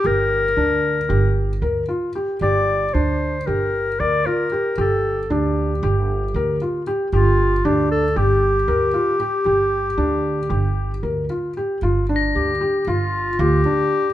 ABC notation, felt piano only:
X:1
M:9/8
L:1/8
Q:3/8=76
K:Gm
V:1 name="Felt piano"
G2 D2 G2 B F G | G2 D2 G2 B F G | G2 D2 G2 B F G | G2 D2 G2 B F G |
G2 D2 G2 B F G | F D2 G F2 F D2 |]